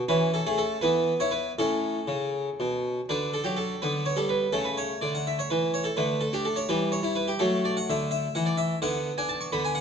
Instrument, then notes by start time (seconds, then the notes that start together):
harpsichord
0.09 E3 C#4 B4
0.34 A4
0.46 A3 G#4
0.58 A4
0.81 E3 B3 B4
1.20 E4 C#5
1.31 B4
1.59 A2 C#4 A4
2.08 C#3
2.60 B2
3.09 D3 D4 B4
3.34 A4
3.44 F#3 G4
3.57 A4
3.82 D3 B3 B4
4.06 C#5
4.16 G3 A4
4.29 B4
4.53 C#3 A3 A4
4.64 B4
4.77 C#5
5.01 D3 D5
5.15 F#5
5.27 E5
5.39 C#5
5.50 E3 B4
5.74 C#5
5.84 A4
5.97 D3 A3 B4
6.21 A4
6.33 D4 G4
6.45 A4
6.56 C#5
6.69 E3 G3 B4
6.92 C#5
7.03 E4
7.15 B4
7.28 G4
7.39 F#3 A3 A4
7.65 D5
7.77 F#5
7.90 D3 E5
8.11 E5
8.35 E3 F#5
8.46 D5
8.57 E5
8.82 D3 B3 F#5
9.18 D4 G#5
9.29 A5
9.41 C#6
9.52 D3 B3 B5
9.65 G#5
9.75 F#5